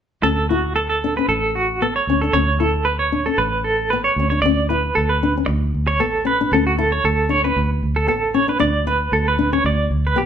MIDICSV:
0, 0, Header, 1, 6, 480
1, 0, Start_track
1, 0, Key_signature, 2, "major"
1, 0, Tempo, 522648
1, 219, Time_signature, 4, 2, 24, 8
1, 9421, End_track
2, 0, Start_track
2, 0, Title_t, "Clean electric guitar"
2, 0, Program_c, 0, 27
2, 214, Note_on_c, 0, 69, 78
2, 446, Note_off_c, 0, 69, 0
2, 453, Note_on_c, 0, 66, 53
2, 686, Note_off_c, 0, 66, 0
2, 695, Note_on_c, 0, 69, 67
2, 811, Note_off_c, 0, 69, 0
2, 822, Note_on_c, 0, 69, 57
2, 1056, Note_off_c, 0, 69, 0
2, 1074, Note_on_c, 0, 71, 67
2, 1178, Note_off_c, 0, 71, 0
2, 1181, Note_on_c, 0, 69, 68
2, 1412, Note_off_c, 0, 69, 0
2, 1427, Note_on_c, 0, 66, 61
2, 1656, Note_off_c, 0, 66, 0
2, 1673, Note_on_c, 0, 69, 62
2, 1793, Note_off_c, 0, 69, 0
2, 1798, Note_on_c, 0, 73, 57
2, 2026, Note_off_c, 0, 73, 0
2, 2034, Note_on_c, 0, 69, 60
2, 2143, Note_off_c, 0, 69, 0
2, 2143, Note_on_c, 0, 73, 82
2, 2375, Note_off_c, 0, 73, 0
2, 2386, Note_on_c, 0, 69, 66
2, 2616, Note_on_c, 0, 71, 69
2, 2617, Note_off_c, 0, 69, 0
2, 2743, Note_off_c, 0, 71, 0
2, 2747, Note_on_c, 0, 73, 57
2, 2982, Note_off_c, 0, 73, 0
2, 2993, Note_on_c, 0, 69, 63
2, 3103, Note_off_c, 0, 69, 0
2, 3105, Note_on_c, 0, 71, 71
2, 3337, Note_off_c, 0, 71, 0
2, 3346, Note_on_c, 0, 69, 58
2, 3578, Note_off_c, 0, 69, 0
2, 3584, Note_on_c, 0, 71, 60
2, 3709, Note_off_c, 0, 71, 0
2, 3712, Note_on_c, 0, 73, 61
2, 3938, Note_off_c, 0, 73, 0
2, 3949, Note_on_c, 0, 73, 59
2, 4054, Note_off_c, 0, 73, 0
2, 4057, Note_on_c, 0, 74, 85
2, 4294, Note_off_c, 0, 74, 0
2, 4308, Note_on_c, 0, 71, 59
2, 4539, Note_off_c, 0, 71, 0
2, 4548, Note_on_c, 0, 69, 76
2, 4672, Note_off_c, 0, 69, 0
2, 4678, Note_on_c, 0, 71, 59
2, 4907, Note_off_c, 0, 71, 0
2, 5395, Note_on_c, 0, 73, 66
2, 5504, Note_off_c, 0, 73, 0
2, 5511, Note_on_c, 0, 69, 62
2, 5739, Note_off_c, 0, 69, 0
2, 5755, Note_on_c, 0, 71, 74
2, 5981, Note_off_c, 0, 71, 0
2, 5997, Note_on_c, 0, 69, 90
2, 6115, Note_off_c, 0, 69, 0
2, 6122, Note_on_c, 0, 66, 66
2, 6227, Note_off_c, 0, 66, 0
2, 6231, Note_on_c, 0, 69, 67
2, 6352, Note_off_c, 0, 69, 0
2, 6357, Note_on_c, 0, 73, 70
2, 6464, Note_off_c, 0, 73, 0
2, 6473, Note_on_c, 0, 69, 79
2, 6699, Note_off_c, 0, 69, 0
2, 6708, Note_on_c, 0, 73, 80
2, 6829, Note_off_c, 0, 73, 0
2, 6836, Note_on_c, 0, 71, 70
2, 7063, Note_off_c, 0, 71, 0
2, 7312, Note_on_c, 0, 69, 68
2, 7414, Note_off_c, 0, 69, 0
2, 7425, Note_on_c, 0, 69, 68
2, 7653, Note_off_c, 0, 69, 0
2, 7666, Note_on_c, 0, 73, 72
2, 7786, Note_off_c, 0, 73, 0
2, 7798, Note_on_c, 0, 71, 69
2, 7897, Note_off_c, 0, 71, 0
2, 7901, Note_on_c, 0, 74, 83
2, 8130, Note_off_c, 0, 74, 0
2, 8149, Note_on_c, 0, 71, 66
2, 8373, Note_off_c, 0, 71, 0
2, 8385, Note_on_c, 0, 69, 71
2, 8505, Note_off_c, 0, 69, 0
2, 8523, Note_on_c, 0, 71, 66
2, 8744, Note_off_c, 0, 71, 0
2, 8754, Note_on_c, 0, 73, 71
2, 8858, Note_off_c, 0, 73, 0
2, 8871, Note_on_c, 0, 74, 73
2, 9094, Note_off_c, 0, 74, 0
2, 9245, Note_on_c, 0, 71, 62
2, 9343, Note_off_c, 0, 71, 0
2, 9347, Note_on_c, 0, 67, 68
2, 9421, Note_off_c, 0, 67, 0
2, 9421, End_track
3, 0, Start_track
3, 0, Title_t, "Nylon-string guitar"
3, 0, Program_c, 1, 24
3, 220, Note_on_c, 1, 61, 70
3, 399, Note_off_c, 1, 61, 0
3, 463, Note_on_c, 1, 64, 57
3, 642, Note_off_c, 1, 64, 0
3, 956, Note_on_c, 1, 62, 68
3, 1047, Note_off_c, 1, 62, 0
3, 1089, Note_on_c, 1, 61, 56
3, 1262, Note_off_c, 1, 61, 0
3, 1670, Note_on_c, 1, 59, 65
3, 1849, Note_off_c, 1, 59, 0
3, 1925, Note_on_c, 1, 61, 61
3, 2014, Note_off_c, 1, 61, 0
3, 2050, Note_on_c, 1, 62, 58
3, 2129, Note_off_c, 1, 62, 0
3, 2149, Note_on_c, 1, 61, 74
3, 2329, Note_off_c, 1, 61, 0
3, 2390, Note_on_c, 1, 64, 60
3, 2570, Note_off_c, 1, 64, 0
3, 2868, Note_on_c, 1, 62, 64
3, 2965, Note_off_c, 1, 62, 0
3, 3000, Note_on_c, 1, 61, 60
3, 3179, Note_off_c, 1, 61, 0
3, 3609, Note_on_c, 1, 59, 71
3, 3783, Note_off_c, 1, 59, 0
3, 3853, Note_on_c, 1, 61, 62
3, 3941, Note_off_c, 1, 61, 0
3, 3965, Note_on_c, 1, 62, 58
3, 4048, Note_off_c, 1, 62, 0
3, 4092, Note_on_c, 1, 61, 83
3, 4264, Note_off_c, 1, 61, 0
3, 4316, Note_on_c, 1, 64, 65
3, 4494, Note_off_c, 1, 64, 0
3, 4804, Note_on_c, 1, 62, 69
3, 4895, Note_off_c, 1, 62, 0
3, 4935, Note_on_c, 1, 61, 58
3, 5109, Note_off_c, 1, 61, 0
3, 5512, Note_on_c, 1, 59, 75
3, 5691, Note_off_c, 1, 59, 0
3, 5739, Note_on_c, 1, 61, 66
3, 5839, Note_off_c, 1, 61, 0
3, 5885, Note_on_c, 1, 62, 62
3, 5966, Note_off_c, 1, 62, 0
3, 6008, Note_on_c, 1, 61, 82
3, 6180, Note_off_c, 1, 61, 0
3, 6231, Note_on_c, 1, 64, 74
3, 6409, Note_off_c, 1, 64, 0
3, 6697, Note_on_c, 1, 62, 68
3, 6796, Note_off_c, 1, 62, 0
3, 6839, Note_on_c, 1, 61, 64
3, 7016, Note_off_c, 1, 61, 0
3, 7421, Note_on_c, 1, 59, 75
3, 7601, Note_off_c, 1, 59, 0
3, 7662, Note_on_c, 1, 61, 70
3, 7758, Note_off_c, 1, 61, 0
3, 7788, Note_on_c, 1, 62, 64
3, 7873, Note_off_c, 1, 62, 0
3, 7893, Note_on_c, 1, 62, 86
3, 8075, Note_off_c, 1, 62, 0
3, 8621, Note_on_c, 1, 62, 68
3, 8716, Note_off_c, 1, 62, 0
3, 8749, Note_on_c, 1, 61, 67
3, 8927, Note_off_c, 1, 61, 0
3, 9330, Note_on_c, 1, 59, 72
3, 9421, Note_off_c, 1, 59, 0
3, 9421, End_track
4, 0, Start_track
4, 0, Title_t, "Fingered electric bass"
4, 0, Program_c, 2, 33
4, 210, Note_on_c, 2, 38, 86
4, 1082, Note_off_c, 2, 38, 0
4, 1177, Note_on_c, 2, 33, 72
4, 1831, Note_off_c, 2, 33, 0
4, 1903, Note_on_c, 2, 38, 64
4, 2122, Note_off_c, 2, 38, 0
4, 2140, Note_on_c, 2, 38, 87
4, 3010, Note_off_c, 2, 38, 0
4, 3102, Note_on_c, 2, 33, 82
4, 3755, Note_off_c, 2, 33, 0
4, 3823, Note_on_c, 2, 38, 75
4, 4044, Note_off_c, 2, 38, 0
4, 4066, Note_on_c, 2, 38, 82
4, 4501, Note_off_c, 2, 38, 0
4, 4562, Note_on_c, 2, 38, 81
4, 4989, Note_off_c, 2, 38, 0
4, 5031, Note_on_c, 2, 38, 87
4, 5247, Note_off_c, 2, 38, 0
4, 5275, Note_on_c, 2, 38, 73
4, 5515, Note_off_c, 2, 38, 0
4, 5515, Note_on_c, 2, 33, 84
4, 5944, Note_off_c, 2, 33, 0
4, 5985, Note_on_c, 2, 38, 98
4, 6418, Note_off_c, 2, 38, 0
4, 6467, Note_on_c, 2, 38, 85
4, 6898, Note_off_c, 2, 38, 0
4, 6946, Note_on_c, 2, 38, 94
4, 7162, Note_off_c, 2, 38, 0
4, 7188, Note_on_c, 2, 38, 74
4, 7425, Note_off_c, 2, 38, 0
4, 7425, Note_on_c, 2, 33, 86
4, 7855, Note_off_c, 2, 33, 0
4, 7906, Note_on_c, 2, 38, 87
4, 8335, Note_off_c, 2, 38, 0
4, 8376, Note_on_c, 2, 38, 85
4, 8809, Note_off_c, 2, 38, 0
4, 8855, Note_on_c, 2, 38, 92
4, 9073, Note_off_c, 2, 38, 0
4, 9096, Note_on_c, 2, 38, 72
4, 9332, Note_off_c, 2, 38, 0
4, 9332, Note_on_c, 2, 35, 79
4, 9421, Note_off_c, 2, 35, 0
4, 9421, End_track
5, 0, Start_track
5, 0, Title_t, "Muted clean electric guitar strokes"
5, 5016, Note_on_c, 9, 29, 84
5, 5108, Note_off_c, 9, 29, 0
5, 9421, End_track
6, 0, Start_track
6, 0, Title_t, "Muted nylon-string guitar strokes"
6, 8145, Note_on_c, 9, 29, 65
6, 8237, Note_off_c, 9, 29, 0
6, 9421, End_track
0, 0, End_of_file